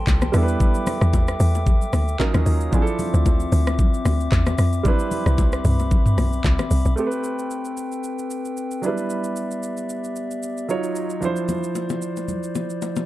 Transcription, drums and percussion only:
0.07 kick, clap, high bongo, shaker
0.22 cross-stick, low bongo, shaker
0.34 cross-stick, open hi-hat, shaker
0.48 shaker
0.60 kick, low conga, shaker
0.74 shaker
0.87 cross-stick, open hi-hat, low conga, shaker
1.01 cross-stick, shaker
1.13 kick, high bongo, shaker
1.28 cross-stick, shaker
1.40 open hi-hat, shaker
1.55 high bongo, shaker
1.66 kick, low conga, shaker
1.82 shaker
1.93 cross-stick, open hi-hat, low bongo, shaker
2.08 shaker
2.20 kick, clap, high bongo, shaker
2.34 cross-stick, low bongo, shaker
2.46 open hi-hat, shaker
2.60 shaker
2.73 kick, low conga, shaker
2.87 shaker
2.99 open hi-hat, low conga, shaker
3.14 shaker
3.26 kick, high bongo, shaker
3.40 shaker
3.52 open hi-hat, shaker
3.67 cross-stick, high bongo, shaker
3.79 kick, low conga, shaker
3.94 shaker
4.05 cross-stick, open hi-hat, low bongo, shaker
4.20 shaker
4.32 kick, clap, high bongo, shaker
4.46 cross-stick, low bongo, shaker
4.58 cross-stick, open hi-hat, shaker
4.73 shaker
4.85 kick, low conga, shaker
4.99 shaker
5.11 open hi-hat, low conga, shaker
5.26 cross-stick, shaker
5.38 kick, high bongo, shaker
5.52 cross-stick, shaker
5.65 mid tom, open hi-hat, shaker
5.79 high bongo, shaker
5.91 kick, low conga, shaker
6.06 mid tom, shaker
6.18 cross-stick, open hi-hat, high bongo, low bongo, shaker
6.33 shaker
6.44 kick, clap, high bongo, shaker
6.59 cross-stick, low bongo, shaker
6.71 open hi-hat, shaker
6.85 shaker
6.97 shaker
7.12 shaker
7.24 shaker
7.39 shaker
7.51 shaker
7.65 shaker
7.77 shaker
7.92 shaker
8.04 shaker
8.19 shaker
8.30 shaker
8.45 shaker
8.57 shaker
8.71 shaker
8.83 shaker
8.98 shaker
9.10 shaker
9.24 shaker
9.36 shaker
9.51 shaker
9.63 shaker
9.77 shaker
9.89 shaker
10.04 shaker
10.16 shaker
10.31 shaker
10.43 shaker
10.57 shaker
10.69 shaker
10.83 shaker
10.96 shaker
11.10 shaker
11.22 low conga, shaker
11.36 shaker
11.49 low bongo, low conga, shaker
11.63 shaker
11.75 high bongo, shaker
11.89 low bongo, shaker
12.02 shaker
12.16 high bongo, shaker
12.28 low conga, shaker
12.43 shaker
12.55 low bongo, shaker
12.70 shaker
12.82 high bongo, shaker
12.96 low bongo, shaker

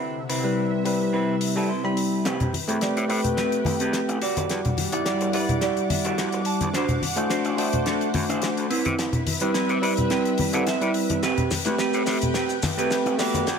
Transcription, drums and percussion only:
0.30 open hi-hat
0.85 open hi-hat
1.41 open hi-hat
1.97 open hi-hat
2.25 snare, closed hi-hat
2.40 closed hi-hat, low conga
2.53 open hi-hat, high conga
2.69 closed hi-hat
2.81 snare, closed hi-hat
2.97 closed hi-hat
3.10 open hi-hat
3.24 closed hi-hat, low conga
3.37 snare, closed hi-hat
3.52 closed hi-hat
3.65 open hi-hat, high conga
3.80 closed hi-hat
3.93 snare, closed hi-hat
4.09 closed hi-hat
4.22 open hi-hat
4.37 closed hi-hat, high conga
4.50 snare, closed hi-hat
4.65 closed hi-hat, low conga
4.77 open hi-hat, high conga
4.92 closed hi-hat
5.05 snare, closed hi-hat
5.21 closed hi-hat
5.33 open hi-hat
5.49 closed hi-hat, low conga
5.61 snare, closed hi-hat
5.77 closed hi-hat
5.90 open hi-hat, high conga
6.05 closed hi-hat
6.18 snare, closed hi-hat
6.32 closed hi-hat
6.45 open hi-hat
6.61 closed hi-hat, high conga
6.74 snare, closed hi-hat
6.88 closed hi-hat, low conga
7.02 open hi-hat, high conga
7.17 closed hi-hat
7.30 snare, closed hi-hat
7.45 closed hi-hat
7.58 open hi-hat
7.73 closed hi-hat, low conga
7.86 snare, closed hi-hat
8.01 closed hi-hat
8.14 open hi-hat, high conga
8.30 closed hi-hat
8.42 snare, closed hi-hat
8.57 closed hi-hat
8.71 open hi-hat
8.85 closed hi-hat, high conga
8.99 snare, closed hi-hat
9.12 closed hi-hat, low conga
9.27 open hi-hat, high conga
9.40 closed hi-hat
9.54 snare, closed hi-hat
9.69 closed hi-hat
9.83 open hi-hat
9.97 closed hi-hat, low conga
10.10 snare, closed hi-hat
10.25 closed hi-hat
10.38 open hi-hat, high conga
10.53 closed hi-hat
10.67 snare, closed hi-hat
10.81 closed hi-hat
10.94 open hi-hat
11.10 closed hi-hat, high conga
11.23 snare, closed hi-hat, shaker
11.38 closed hi-hat, low conga
11.51 snare, open hi-hat, high bongo, high conga, shaker
11.65 closed hi-hat, high bongo, shaker
11.78 snare, closed hi-hat, shaker
11.93 closed hi-hat, shaker
12.06 snare, open hi-hat, shaker
12.22 closed hi-hat, low conga, shaker
12.34 snare, closed hi-hat, shaker
12.49 closed hi-hat, shaker
12.62 snare, open hi-hat, high conga, shaker
12.79 closed hi-hat, shaker
12.91 snare, closed hi-hat, shaker
13.06 closed hi-hat, high bongo
13.19 snare, open hi-hat, shaker
13.34 closed hi-hat, high conga, shaker
13.47 snare, closed hi-hat, shaker

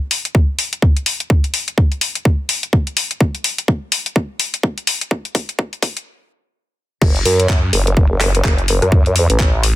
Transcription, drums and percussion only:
0.11 open hi-hat
0.25 closed hi-hat
0.35 kick
0.59 open hi-hat
0.73 closed hi-hat
0.82 kick
0.97 closed hi-hat
1.06 open hi-hat
1.20 closed hi-hat
1.30 kick
1.44 closed hi-hat
1.54 open hi-hat
1.68 closed hi-hat
1.78 kick
1.92 closed hi-hat
2.01 open hi-hat
2.15 closed hi-hat
2.25 kick
2.49 open hi-hat
2.63 closed hi-hat
2.73 kick
2.87 closed hi-hat
2.97 open hi-hat
3.11 closed hi-hat
3.21 kick
3.35 closed hi-hat
3.44 open hi-hat
3.58 closed hi-hat
3.68 kick
3.92 open hi-hat
4.06 closed hi-hat
4.16 kick
4.40 open hi-hat
4.54 closed hi-hat
4.63 kick
4.78 closed hi-hat
4.87 open hi-hat
5.01 closed hi-hat
5.11 kick
5.25 closed hi-hat
5.35 kick, open hi-hat
5.49 closed hi-hat
5.59 kick
5.73 closed hi-hat
5.82 kick, open hi-hat
5.97 closed hi-hat
7.02 kick, crash
7.16 closed hi-hat
7.25 open hi-hat
7.40 closed hi-hat
7.49 kick, clap
7.73 open hi-hat
7.87 closed hi-hat
7.97 kick
8.21 cross-stick, clap, open hi-hat
8.35 closed hi-hat
8.44 kick, clap
8.58 closed hi-hat
8.68 open hi-hat
8.82 cross-stick, closed hi-hat
8.92 kick
9.06 closed hi-hat
9.16 open hi-hat
9.30 closed hi-hat
9.40 kick, clap
9.63 open hi-hat

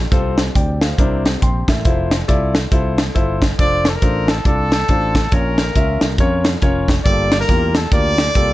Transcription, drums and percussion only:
0.12 kick, closed hi-hat
0.38 snare, closed hi-hat
0.55 kick, closed hi-hat
0.81 snare, closed hi-hat
0.98 kick, closed hi-hat
1.26 snare, closed hi-hat
1.42 kick, closed hi-hat
1.68 kick, snare, closed hi-hat
1.85 kick, closed hi-hat
2.11 snare, closed hi-hat
2.29 kick, closed hi-hat
2.55 snare, closed hi-hat
2.72 kick, closed hi-hat
2.98 snare, closed hi-hat
3.16 kick, closed hi-hat
3.42 kick, snare, closed hi-hat
3.59 kick, closed hi-hat
3.85 snare, closed hi-hat
4.02 kick, closed hi-hat
4.28 snare, closed hi-hat
4.45 kick, closed hi-hat
4.72 snare, closed hi-hat
4.88 kick, closed hi-hat
5.15 kick, snare, closed hi-hat
5.32 kick, closed hi-hat
5.58 snare, closed hi-hat
5.75 kick, closed hi-hat
6.01 snare, closed hi-hat
6.18 kick, closed hi-hat
6.45 snare, closed hi-hat
6.62 kick, closed hi-hat
6.88 kick, snare, closed hi-hat
7.06 kick, closed hi-hat
7.32 snare, closed hi-hat
7.49 kick, closed hi-hat
7.75 snare, closed hi-hat
7.92 kick, closed hi-hat
8.18 snare, closed hi-hat
8.35 kick, closed hi-hat

